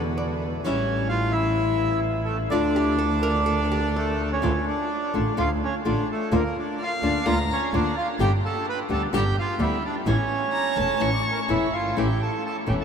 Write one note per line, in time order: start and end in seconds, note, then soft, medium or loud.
0.00 0.56 E2 medium
0.00 0.62 B2 medium
0.00 0.63 D3 medium
0.00 0.63 G#3 medium
0.00 0.63 B3 medium
0.00 0.64 E4 loud
0.00 0.15 B4 medium
0.18 0.50 D5 medium
0.64 2.43 A1 medium
0.64 2.50 E3 medium
0.64 2.51 G3 medium
0.64 1.08 C#4 medium
0.64 2.51 C#4 medium
0.64 2.52 E4 medium
0.64 1.08 C#5 medium
1.09 1.32 F4 medium
1.09 1.34 F5 loud
1.32 2.00 E4 medium
1.32 1.99 E5 loud
2.25 2.38 A3 medium
2.25 2.36 A4 medium
2.50 4.34 D2 medium
2.50 4.41 D3 medium
2.50 4.41 A3 medium
2.50 4.15 D4 loud
2.50 4.42 D4 medium
2.50 4.42 F4 loud
2.50 4.15 D5 loud
2.76 2.98 G4 medium
2.99 3.21 A4 medium
3.23 3.46 A#4 loud
3.46 3.71 A4 medium
3.72 3.78 G4 medium
3.96 4.29 A3 medium
3.96 4.41 A4 medium
3.96 4.31 A4 medium
4.32 4.65 C#4 medium
4.32 4.65 C#5 medium
4.42 4.63 D2 loud
4.42 4.52 D3 medium
4.42 4.52 A3 medium
4.42 4.52 D4 loud
4.42 4.52 F4 medium
4.67 5.34 D4 medium
4.67 5.41 D5 medium
5.14 5.35 A1 medium
5.14 5.31 D3 medium
5.14 5.32 A3 medium
5.14 5.32 D4 medium
5.14 5.32 F4 medium
5.37 5.58 D2 medium
5.37 5.47 D3 medium
5.37 5.47 A3 medium
5.37 5.47 D4 medium
5.37 5.47 F4 loud
5.37 5.49 F4 medium
5.37 5.51 F5 medium
5.64 5.74 C#4 medium
5.64 5.75 C#5 medium
5.85 6.06 A1 medium
5.85 6.02 D3 medium
5.85 6.02 A3 medium
5.85 6.02 D4 medium
5.85 6.08 D4 medium
5.85 6.03 F4 medium
5.85 6.09 D5 medium
6.11 6.32 A3 medium
6.11 6.32 A4 medium
6.32 6.52 D2 medium
6.32 6.41 D3 medium
6.32 6.41 A#3 medium
6.32 6.41 D4 medium
6.32 6.42 F4 medium
6.36 6.56 A#3 medium
6.36 6.57 A#4 medium
6.58 6.79 D4 medium
6.58 6.82 D5 medium
6.80 6.92 F4 medium
6.80 7.27 F5 medium
6.80 6.92 F5 medium
7.02 7.23 D2 medium
7.02 7.20 D3 medium
7.02 7.20 A#3 medium
7.02 7.20 D4 medium
7.02 7.26 D4 medium
7.02 7.20 F4 medium
7.02 7.29 D5 medium
7.26 7.46 D2 medium
7.26 7.35 D3 medium
7.26 7.35 A#3 medium
7.26 7.35 D4 medium
7.26 7.35 F4 loud
7.26 7.39 F4 medium
7.26 7.39 F5 loud
7.26 7.54 A#5 medium
7.52 7.73 C#4 medium
7.52 7.76 C#5 loud
7.73 7.93 D2 medium
7.73 7.91 D3 medium
7.73 7.91 A#3 medium
7.73 7.91 D4 medium
7.73 7.96 D4 medium
7.73 7.91 F4 medium
7.73 7.96 D5 loud
7.97 8.08 F4 medium
7.97 8.08 F5 medium
8.19 8.40 G1 loud
8.19 8.29 D3 medium
8.19 8.29 G3 medium
8.19 8.29 B3 medium
8.19 8.29 G4 loud
8.19 8.33 G4 medium
8.19 8.32 G5 loud
8.45 8.66 A4 medium
8.45 8.66 A5 loud
8.69 8.79 B4 medium
8.69 8.80 B5 loud
8.89 9.10 D2 medium
8.89 9.06 D3 medium
8.89 9.07 G3 medium
8.89 9.07 B3 medium
8.89 9.07 G4 medium
8.89 9.03 A5 loud
8.93 9.03 A4 medium
9.12 9.33 G1 medium
9.12 9.22 D3 medium
9.12 9.23 G3 loud
9.12 9.23 B3 medium
9.12 9.23 G4 loud
9.12 9.36 G4 medium
9.12 9.36 G5 loud
9.39 9.61 F4 medium
9.39 9.62 F5 loud
9.59 9.79 D2 medium
9.59 9.76 D3 medium
9.59 9.77 G3 medium
9.59 9.77 B3 medium
9.59 9.83 E4 medium
9.59 9.77 G4 medium
9.59 9.83 E5 loud
9.85 9.96 D4 medium
9.85 9.95 D5 loud
10.06 10.27 A1 loud
10.06 10.16 E3 medium
10.06 10.16 A3 medium
10.06 10.16 C#4 medium
10.06 11.10 C#4 medium
10.06 10.16 E4 loud
10.06 11.09 C#5 loud
10.53 10.79 A#5 medium
10.76 10.98 E1 medium
10.76 10.94 E3 medium
10.76 10.94 A3 medium
10.76 10.94 C#4 medium
10.76 10.94 E4 medium
10.76 11.03 A5 medium
11.00 11.21 A1 medium
11.00 11.10 E3 medium
11.00 11.10 A3 medium
11.00 11.10 C#4 medium
11.00 11.10 E4 medium
11.00 11.37 C#6 medium
11.13 11.22 D5 medium
11.21 11.30 C#5 medium
11.31 11.40 A#4 medium
11.41 11.50 C#5 medium
11.48 11.70 E1 medium
11.48 11.66 E3 medium
11.48 11.66 A3 medium
11.48 11.66 C#4 medium
11.48 11.67 E4 medium
11.48 11.73 E4 medium
11.48 11.74 E5 medium
11.73 11.97 G1 medium
11.73 11.96 F4 medium
11.73 11.95 F5 medium
11.96 12.17 A1 medium
11.96 12.06 E3 medium
11.96 12.06 A3 medium
11.96 12.06 C#4 medium
11.96 12.07 E4 medium
11.96 12.20 G4 medium
11.96 12.22 G5 medium
12.22 12.44 A4 medium
12.22 12.44 A5 medium
12.46 12.57 A4 medium
12.46 12.57 A5 medium
12.66 12.84 E1 medium
12.66 12.84 E3 medium
12.66 12.84 A3 medium
12.66 12.84 C#4 medium
12.66 12.84 E4 medium
12.66 12.74 G4 medium
12.66 12.74 G5 medium
12.81 12.84 A5 medium